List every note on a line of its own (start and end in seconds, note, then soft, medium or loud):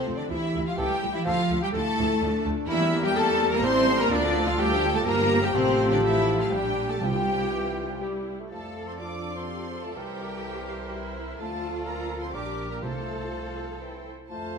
0.00 0.15 C3 medium
0.00 0.15 C4 medium
0.00 0.15 C4 loud
0.00 0.15 C4 medium
0.00 0.26 A4 medium
0.00 0.15 C5 medium
0.00 0.16 C5 loud
0.06 0.14 D2 medium
0.06 0.14 F3 medium
0.06 0.14 A3 medium
0.16 0.30 D3 medium
0.16 0.29 D4 medium
0.16 0.30 D4 medium
0.16 0.24 D4 medium
0.16 0.30 D5 medium
0.16 0.31 D5 medium
0.29 0.39 D2 medium
0.29 0.65 E3 medium
0.29 0.38 F3 medium
0.29 0.38 A3 medium
0.29 0.65 E4 medium
0.29 0.68 E4 medium
0.29 1.25 G4 medium
0.29 0.65 E5 medium
0.29 0.66 E5 loud
0.54 0.62 D2 medium
0.54 0.62 F3 medium
0.54 0.62 A3 medium
0.66 0.78 F3 medium
0.66 0.78 F4 medium
0.66 0.79 F4 medium
0.66 0.71 F4 medium
0.66 0.78 F5 medium
0.66 0.79 F5 medium
0.77 0.86 C#2 medium
0.77 0.94 E3 medium
0.77 0.87 E3 medium
0.77 1.14 G3 loud
0.77 0.87 A3 medium
0.77 1.14 G4 medium
0.77 1.14 G4 loud
0.77 0.95 A4 medium
0.77 1.13 G5 loud
0.77 1.14 G5 loud
1.02 1.11 C#2 medium
1.02 1.10 E3 medium
1.02 1.11 A3 medium
1.13 1.26 E3 medium
1.13 1.19 E4 medium
1.13 1.20 E4 medium
1.13 1.26 E4 medium
1.13 1.26 E5 loud
1.13 1.27 E5 loud
1.24 1.34 D2 medium
1.24 1.42 F3 medium
1.24 1.34 F3 medium
1.24 1.62 F3 loud
1.24 1.34 A3 medium
1.24 1.64 F4 medium
1.24 1.61 F4 medium
1.24 1.74 F4 medium
1.24 1.62 F4 loud
1.24 1.43 A4 medium
1.24 1.61 F5 loud
1.24 1.62 F5 loud
1.50 1.58 D2 medium
1.50 1.58 F3 medium
1.50 1.59 A3 medium
1.61 1.67 G3 loud
1.61 1.74 G4 loud
1.61 1.72 G4 medium
1.61 1.68 G4 medium
1.61 1.74 G5 medium
1.61 1.68 G5 loud
1.72 1.82 D2 medium
1.72 1.82 F3 medium
1.72 2.44 A3 loud
1.72 1.82 A3 medium
1.72 2.21 E4 medium
1.72 2.43 A4 loud
1.72 2.44 A4 loud
1.72 2.43 A5 loud
1.72 2.45 A5 loud
1.98 2.06 D2 loud
1.98 2.07 F3 medium
1.98 2.07 A3 medium
2.20 2.30 D2 loud
2.20 2.30 F3 medium
2.20 2.30 A3 medium
2.20 2.68 D4 loud
2.46 2.54 D2 medium
2.46 2.54 F3 medium
2.46 2.54 A3 medium
2.68 3.61 E2 loud
2.68 2.80 E3 medium
2.68 3.03 E3 loud
2.68 3.60 G3 medium
2.68 2.80 A#3 medium
2.68 3.06 E4 loud
2.68 3.02 E4 loud
2.68 3.03 E4 loud
2.68 3.62 G4 loud
2.68 3.65 A#4 medium
2.68 3.02 E5 loud
2.68 3.03 E5 loud
2.80 2.93 G3 medium
2.92 3.05 E3 medium
2.92 3.05 A#3 medium
3.04 3.17 G3 medium
3.04 3.17 G3 loud
3.04 3.09 G4 loud
3.04 3.17 G4 loud
3.04 3.16 G5 loud
3.04 3.18 G5 loud
3.15 3.27 E3 medium
3.15 3.53 A3 loud
3.15 3.28 A#3 medium
3.15 3.50 A4 loud
3.15 3.51 A4 loud
3.15 3.53 A4 loud
3.15 3.51 A5 loud
3.15 3.53 A5 loud
3.28 3.41 G3 medium
3.40 3.53 E3 medium
3.40 3.53 A#3 medium
3.50 3.64 G3 medium
3.50 3.65 A#3 loud
3.50 3.63 A#4 loud
3.50 3.57 A#4 loud
3.50 3.65 A#4 loud
3.50 3.64 A#5 loud
3.55 3.66 A#5 loud
3.62 4.12 A1 loud
3.62 3.75 E3 medium
3.62 4.12 G3 loud
3.62 3.75 A3 medium
3.62 4.00 C4 loud
3.62 3.96 E4 loud
3.62 4.11 A4 medium
3.62 4.00 C5 loud
3.62 3.99 C5 loud
3.62 3.99 C6 loud
3.62 4.01 C6 loud
3.76 3.89 G3 medium
3.76 3.88 C4 medium
3.88 4.00 E3 medium
3.88 4.00 A3 medium
3.98 4.12 G3 medium
3.98 4.12 A#3 loud
3.98 4.13 C4 medium
3.98 4.11 A#4 loud
3.98 4.12 A#4 loud
3.98 4.12 A#5 loud
3.98 4.13 A#5 loud
4.10 5.05 D2 loud
4.10 4.48 D3 loud
4.10 4.23 D3 medium
4.10 5.06 F3 loud
4.10 4.24 A3 medium
4.10 4.47 D4 loud
4.10 4.48 D4 loud
4.10 5.04 F4 loud
4.10 5.08 A4 loud
4.10 4.46 D5 loud
4.10 4.47 D5 loud
4.25 4.36 F3 medium
4.25 4.36 D4 medium
4.36 4.48 D3 medium
4.36 4.48 A3 medium
4.44 4.52 F3 loud
4.44 4.60 D4 medium
4.44 4.58 F4 medium
4.44 4.59 F4 loud
4.44 4.60 F4 loud
4.44 4.60 F5 loud
4.48 4.60 F3 medium
4.48 4.60 F5 loud
4.58 4.71 D3 medium
4.58 4.95 G3 loud
4.58 4.70 A3 medium
4.58 4.94 G4 loud
4.58 4.95 G4 loud
4.58 4.96 G4 loud
4.58 4.95 G5 loud
4.72 4.84 F3 medium
4.72 4.84 D4 medium
4.84 4.96 D3 medium
4.84 4.96 A3 medium
4.93 5.07 F3 medium
4.93 5.07 A3 loud
4.93 5.07 D4 medium
4.93 5.06 A4 loud
4.93 5.07 A4 medium
4.93 5.07 A5 loud
4.93 5.08 A5 loud
5.06 5.54 G1 loud
5.06 5.54 F3 loud
5.06 5.19 G3 medium
5.06 5.42 A#3 loud
5.06 5.19 A#3 medium
5.06 6.99 G4 loud
5.06 5.43 A#4 loud
5.06 5.54 A#4 medium
5.06 5.47 A#4 loud
5.06 5.44 A#4 loud
5.06 5.43 A#5 loud
5.20 5.32 F3 medium
5.20 5.32 G3 medium
5.32 5.43 G3 medium
5.32 5.44 A#3 medium
5.42 5.56 F3 medium
5.42 5.55 G3 loud
5.42 5.56 G3 medium
5.42 5.47 G4 loud
5.42 5.56 G4 loud
5.42 5.57 G4 loud
5.42 5.48 G5 loud
5.42 5.56 G5 loud
5.54 6.48 A1 medium
5.54 5.92 C3 loud
5.54 6.54 F3 medium
5.54 6.49 F3 loud
5.54 6.49 A3 medium
5.54 5.90 C4 loud
5.54 5.92 C4 loud
5.54 6.54 A4 loud
5.54 5.91 C5 loud
5.91 6.04 D3 medium
5.91 6.03 D4 medium
5.91 5.98 D4 medium
5.91 5.97 D5 medium
5.91 6.04 D5 loud
6.03 6.40 E3 medium
6.03 6.40 E4 loud
6.03 6.43 E4 loud
6.03 6.40 E5 medium
6.03 6.40 E5 loud
6.39 6.51 F3 medium
6.39 6.52 F4 medium
6.39 6.53 F4 medium
6.39 6.55 F4 medium
6.39 6.53 F5 medium
6.52 7.01 A#1 medium
6.52 6.89 G3 medium
6.52 7.01 G3 medium
6.52 7.00 G3 medium
6.52 7.02 D4 medium
6.52 6.89 G4 medium
6.52 7.01 G4 medium
6.52 6.89 G4 medium
6.52 6.90 G4 medium
6.52 6.90 G5 loud
6.52 6.91 G5 loud
6.89 7.02 A3 medium
6.89 7.02 A4 medium
6.89 6.95 A4 medium
6.89 7.03 A4 medium
6.89 7.03 A5 medium
7.00 8.31 C2 medium
7.00 7.73 C3 loud
7.00 7.46 F3 medium
7.00 8.00 G3 medium
7.00 8.02 G3 medium
7.00 8.00 F4 medium
7.00 8.24 G4 medium
7.00 7.99 G4 medium
7.00 8.00 G4 medium
7.00 8.02 G4 medium
7.00 8.03 G5 loud
7.04 8.03 G4 medium
7.04 8.03 G5 medium
7.52 7.91 E3 medium
7.90 8.00 F3 medium
8.01 8.41 G3 medium
8.01 8.31 G3 medium
8.01 8.31 E4 medium
8.01 8.13 G4 medium
8.40 8.51 A3 medium
8.50 9.93 F2 soft
8.50 9.93 F3 soft
8.50 8.86 A3 medium
8.50 9.45 F4 soft
8.50 8.89 A4 medium
8.50 8.97 A4 medium
8.50 9.93 A4 soft
8.50 9.93 D5 soft
8.50 8.98 F5 soft
8.50 8.86 A5 medium
8.88 9.02 C4 medium
8.88 8.99 C5 medium
8.88 9.00 C6 medium
8.88 8.93 C6 soft
8.99 9.36 D4 medium
8.99 9.97 F4 soft
8.99 9.37 D5 medium
8.99 9.95 F5 soft
8.99 9.36 D6 medium
9.35 9.84 C4 medium
9.35 9.84 C5 medium
9.35 9.85 C6 medium
9.48 9.72 G4 medium
9.72 10.92 A4 medium
9.84 9.90 A3 medium
9.84 9.91 A4 medium
9.84 9.96 A5 medium
9.84 9.91 A5 medium
9.94 11.37 C2 medium
9.94 11.22 E3 medium
9.94 11.13 G3 medium
9.94 11.13 G4 medium
9.94 10.90 G4 medium
9.94 11.37 A#4 medium
9.94 10.20 C5 medium
9.94 10.43 E5 medium
9.94 11.15 G5 medium
9.94 11.14 G5 medium
10.20 10.45 A#4 medium
10.45 11.40 C5 medium
10.45 10.53 E5 medium
10.68 10.76 F5 medium
10.92 11.40 E4 medium
10.92 11.00 G4 medium
10.92 11.39 E5 medium
11.15 11.39 E4 medium
11.38 12.33 D2 medium
11.38 12.36 F3 medium
11.38 11.84 A3 medium
11.38 12.32 F4 medium
11.38 12.34 F4 medium
11.38 11.89 A4 medium
11.38 12.32 A4 medium
11.38 12.33 A4 medium
11.38 12.34 D5 medium
11.38 11.83 A5 medium
11.38 11.84 A5 medium
11.87 12.22 A#3 medium
11.87 12.22 A#4 medium
11.87 12.22 A#5 medium
11.87 12.23 A#5 medium
12.21 12.35 C4 medium
12.21 12.34 C5 medium
12.21 12.34 C6 medium
12.34 12.83 A#1 medium
12.34 12.83 G3 medium
12.34 12.71 D4 medium
12.34 12.82 G4 medium
12.34 12.83 G4 medium
12.34 12.84 A#4 medium
12.34 12.82 A#4 medium
12.34 12.70 D5 medium
12.34 12.83 D5 medium
12.34 12.70 D6 medium
12.34 12.71 D6 medium
12.70 12.83 A#3 medium
12.70 12.82 A#4 medium
12.70 12.83 A#5 medium
12.70 12.76 A#5 medium
12.82 14.10 C2 medium
12.82 13.53 C3 medium
12.82 13.82 F3 medium
12.82 13.82 A3 medium
12.82 13.79 F4 soft
12.82 13.79 A4 medium
12.82 13.81 A4 medium
12.82 14.06 A4 medium
12.82 14.05 C5 medium
12.82 13.80 F5 medium
12.82 13.79 A5 medium
13.81 14.06 E3 soft
13.81 14.09 E4 soft
13.81 14.10 C5 soft
13.81 14.10 G5 medium
14.29 14.58 F2 medium
14.29 14.58 F3 medium
14.29 14.58 A3 medium
14.29 14.58 F4 medium
14.29 14.58 A4 medium
14.29 14.58 C5 medium
14.29 14.58 F5 medium
14.29 14.58 A5 medium